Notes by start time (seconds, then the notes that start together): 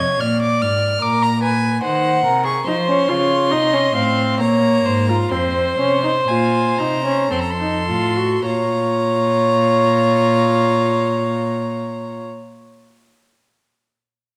Already playing: G#6
0.00 C3 C#5
0.19 A#2 D5 F6
0.42 D6
0.62 G#2 F6
1.02 A#2 A#4 D6
1.23 A#5
1.42 B4 G#5
1.83 D#3 C5 F#5
2.24 C3 A#4
2.45 G#4 C#6
2.66 F3 D#4 C5 C6
2.88 C#4
3.09 C#3 F4 C#5
3.51 C3 D#4 D#5
3.74 C#4
3.95 A2 C4 F5
4.40 A#2 A#3 C#5 A#5
4.85 G#2 C5
5.08 F4 A#4
5.31 F2 C4 C5 C6
5.79 C3 C#4
6.04 D#4
6.28 A#2 F4 G#5
6.78 C3 D#4 A#5
7.06 C#4
7.31 F2 C4 A4 C6
7.41 A#5
7.50 C6
7.60 D#4
7.88 A2 F4
8.16 F#4
8.45 A#2 F4 C#5 A#5